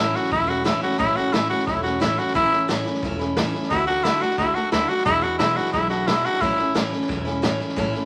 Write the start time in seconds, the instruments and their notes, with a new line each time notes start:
Already playing: steel-string acoustic guitar A2 E3, tenor saxophone E4
0.00 steel-string acoustic guitar A3 C#4 E4
0.14 steel-string acoustic guitar A3 C#4 E4, tenor saxophone F#4, snare
0.23 snare
0.31 upright bass E1, steel-string acoustic guitar E3 A3 C#4 E4, tenor saxophone E4, kick, snare
0.47 steel-string acoustic guitar A3 C#4 E4, tenor saxophone F#4, snare
0.64 steel-string acoustic guitar A2 E3 A3 C#4 E4, tenor saxophone E4, snare, hi-hat pedal
0.81 steel-string acoustic guitar A3 C#4 E4, tenor saxophone F#4, muted upright bass stroke, snare
0.91 snare
0.98 upright bass A1, steel-string acoustic guitar A2 E3 A3 C#4 E4, tenor saxophone E4, kick, snare
1.15 steel-string acoustic guitar A3 C#4 E4, tenor saxophone F#4, snare
1.33 steel-string acoustic guitar A2 E3 A3 C#4 E4, tenor saxophone E4, snare, hi-hat pedal
1.49 steel-string acoustic guitar A3 C#4 E4, tenor saxophone F#4, muted upright bass stroke, snare
1.59 snare
1.66 upright bass E1, steel-string acoustic guitar E3 A3 C#4 E4, tenor saxophone E4, kick, snare
1.83 steel-string acoustic guitar A3 C#4 E4, tenor saxophone F#4, snare
2.00 steel-string acoustic guitar A2 E3 A3 C#4 E4, tenor saxophone E4, snare, hi-hat pedal
2.17 steel-string acoustic guitar A3 C#4 E4, tenor saxophone F#4, muted upright bass stroke, snare
2.27 snare
2.34 upright bass A1, steel-string acoustic guitar A2 E3 A3 C#4 E4, tenor saxophone E4, kick, snare
2.50 steel-string acoustic guitar A3 C#4 E4, snare
2.68 steel-string acoustic guitar A2 E3 A3 C#4 E4, snare, hi-hat pedal
2.85 steel-string acoustic guitar A3 C#4 E4, muted upright bass stroke, snare
2.94 snare
3.02 upright bass E1, steel-string acoustic guitar E3 A3 C#4 E4, kick, snare
3.19 steel-string acoustic guitar A3 C#4 E4, snare
3.37 steel-string acoustic guitar A2 E3 A3 C#4 E4, snare, hi-hat pedal
3.53 steel-string acoustic guitar A3 C#4 E4, muted upright bass stroke, snare
3.62 snare
3.70 upright bass D2, steel-string acoustic guitar D3 A3 D4 F#4, tenor saxophone E4, kick, snare
3.87 steel-string acoustic guitar A3 D4 F#4, tenor saxophone F#4, snare
4.03 steel-string acoustic guitar D3 A3 D4 F#4, tenor saxophone E4, snare, hi-hat pedal
4.20 steel-string acoustic guitar A3 D4 F#4, tenor saxophone F#4, muted upright bass stroke, snare
4.30 snare
4.37 upright bass C#2, steel-string acoustic guitar D3 A3 D4 F#4, tenor saxophone E4, kick, snare
4.54 steel-string acoustic guitar A3 D4 F#4, tenor saxophone F#4, muted upright bass stroke, snare
4.72 upright bass D2, steel-string acoustic guitar D3 A3 D4 F#4, tenor saxophone E4, snare, hi-hat pedal
4.88 steel-string acoustic guitar A3 D4 F#4, tenor saxophone F#4, snare
4.97 snare
5.05 steel-string acoustic guitar E2 B2 E3 G#3 D4 E4, upright bass E2, tenor saxophone E4, kick, snare
5.21 steel-string acoustic guitar E3 G#3 D4 E4, tenor saxophone F#4, snare
5.39 steel-string acoustic guitar E2 B2 E3 G#3 D4 E4, tenor saxophone E4, snare, hi-hat pedal
5.56 steel-string acoustic guitar E3 G#3 D4 E4, tenor saxophone F#4, muted upright bass stroke, snare
5.65 snare
5.73 upright bass B1, steel-string acoustic guitar E3 G#3 D4 E4, tenor saxophone E4, kick, snare
5.90 steel-string acoustic guitar E3 G#3 D4 E4, tenor saxophone F#4, snare
6.07 steel-string acoustic guitar E2 B2 E3 G#3 D4 E4, tenor saxophone E4, snare, hi-hat pedal
6.24 steel-string acoustic guitar E3 G#3 D4 E4, tenor saxophone F#4, muted upright bass stroke, snare
6.33 snare
6.41 upright bass A1, steel-string acoustic guitar A2 E3 A3 C#4 E4, tenor saxophone E4, kick, snare
6.57 steel-string acoustic guitar A3 C#4 E4, snare
6.75 steel-string acoustic guitar A2 E3 A3 C#4 E4, snare, hi-hat pedal
6.91 steel-string acoustic guitar A3 C#4 E4, muted upright bass stroke, snare
7.01 snare
7.08 upright bass E1, steel-string acoustic guitar E3 A3 C#4 E4, kick, snare
7.25 steel-string acoustic guitar A3 C#4 E4, snare
7.42 steel-string acoustic guitar A2 E3 A3 C#4 E4, snare, hi-hat pedal
7.59 steel-string acoustic guitar A3 C#4 E4, muted upright bass stroke, snare
7.69 snare
7.76 upright bass A1, steel-string acoustic guitar A2 E3 A3 C#4 E4, kick, snare
7.93 steel-string acoustic guitar A3 C#4 E4, snare